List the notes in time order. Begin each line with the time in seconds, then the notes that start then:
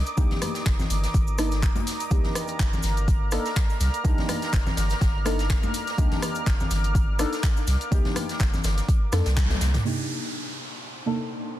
Already playing: A#5 D6 D#6
0.06 closed hi-hat, cabasa
0.17 C2 A#3 D4 D#4 G4, kick, closed hi-hat, cabasa
0.31 snare, closed hi-hat, low conga
0.42 cross-stick, closed hi-hat, open hi-hat, high conga, cabasa
0.54 snare, closed hi-hat, cabasa
0.66 G1, kick, snare, clap, closed hi-hat, cabasa
0.79 snare, low conga, cabasa
0.90 G1, closed hi-hat, open hi-hat, cabasa
1.03 snare, closed hi-hat, cabasa
1.14 G1, kick, closed hi-hat, cabasa
1.27 cabasa
1.38 A#3 D4 D#4 A4, cross-stick, closed hi-hat, open hi-hat, cabasa
1.51 snare, closed hi-hat, cabasa
1.62 kick, clap, closed hi-hat, cabasa
1.76 closed hi-hat, high conga, cabasa
1.87 snare, open hi-hat, cabasa
2.00 closed hi-hat, cabasa
2.10 C2 A#3 D4 D#4 G4 F6, kick, closed hi-hat, cabasa
2.24 snare, closed hi-hat, low conga
2.35 cross-stick, closed hi-hat, open hi-hat, cabasa
2.48 closed hi-hat, cabasa
2.59 G1, kick, snare, clap, closed hi-hat, cabasa
2.73 snare, low conga, cabasa
2.83 G1, snare, closed hi-hat, open hi-hat, cabasa
2.97 closed hi-hat, cabasa
3.08 kick, closed hi-hat, cabasa
3.31 A#3 D4 D#4 A4, cross-stick, closed hi-hat, open hi-hat, cabasa
3.45 snare, closed hi-hat, cabasa
3.56 kick, snare, clap, closed hi-hat, cabasa
3.70 closed hi-hat, cabasa
3.80 C2, snare, closed hi-hat, open hi-hat, cabasa
3.94 closed hi-hat, cabasa
4.04 C2 A#3 D4 D#4 G4, kick, closed hi-hat, cabasa
4.18 snare, closed hi-hat, low conga
4.28 cross-stick, closed hi-hat, open hi-hat, high conga, cabasa
4.42 snare, closed hi-hat, cabasa
4.53 G1, kick, snare, clap, closed hi-hat, cabasa
4.66 snare, low conga, cabasa
4.77 G1, snare, closed hi-hat, open hi-hat, cabasa
4.90 snare, closed hi-hat, cabasa
5.01 G1, kick, snare, closed hi-hat, cabasa
5.25 A#3 D4 D#4 A4, cross-stick, closed hi-hat, open hi-hat, cabasa
5.39 snare, closed hi-hat, cabasa
5.50 kick, snare, clap, closed hi-hat, cabasa
5.63 high conga, cabasa
5.74 closed hi-hat, open hi-hat, cabasa
5.87 snare, closed hi-hat, cabasa
5.97 C2 A#3 D4 D#4 G4, kick, closed hi-hat, cabasa
6.11 snare, closed hi-hat, low conga
6.22 cross-stick, closed hi-hat, open hi-hat, cabasa
6.35 closed hi-hat, cabasa
6.46 G1, kick, snare, clap, closed hi-hat, cabasa
6.60 snare, low conga, cabasa
6.71 G1, snare, closed hi-hat, open hi-hat, cabasa
6.84 closed hi-hat, cabasa
6.95 kick, closed hi-hat, cabasa
7.19 A#3 D4 D#4 A4, cross-stick, closed hi-hat, open hi-hat, cabasa
7.33 snare, closed hi-hat, cabasa
7.43 kick, snare, clap, closed hi-hat, cabasa
7.56 closed hi-hat, cabasa
7.67 C2, snare, closed hi-hat, open hi-hat, cabasa
7.81 closed hi-hat, cabasa
7.91 C2 A#3 D4 D#4 G4, kick, closed hi-hat, cabasa
8.05 snare, closed hi-hat, low conga
8.16 cross-stick, closed hi-hat, open hi-hat, high conga, cabasa
8.29 snare, closed hi-hat, cabasa
8.40 G1, kick, snare, clap, closed hi-hat, cabasa
8.53 snare, low conga, cabasa
8.64 G1, snare, closed hi-hat, open hi-hat, cabasa
8.77 snare, closed hi-hat, cabasa
8.88 kick, closed hi-hat, cabasa
9.12 F2 A#3 D4 D#4 A4, cross-stick, snare, closed hi-hat, open hi-hat, cabasa
9.26 C2, snare, closed hi-hat, cabasa
9.37 kick, snare, clap, closed hi-hat, high tom, cabasa
9.50 snare, closed hi-hat, high tom, high conga, cabasa
9.61 C2, snare, closed hi-hat, open hi-hat, cabasa
9.74 snare, closed hi-hat, mid tom, cabasa
9.84 C3 A#3 D4 D#4 G4 D5 C6, downlifter
11.06 C3 A#3 D4 D#4 A4